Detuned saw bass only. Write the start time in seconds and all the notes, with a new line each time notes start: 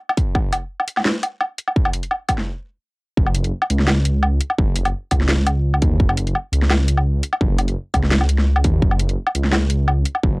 3.17 F#1
3.70 C#2
4.58 F#1
5.12 C#2
5.82 D#2
6.00 F#1
6.52 C#2
7.41 F#1
7.94 C#2
8.65 D#2
8.82 F#1
9.35 C#2
10.23 F#1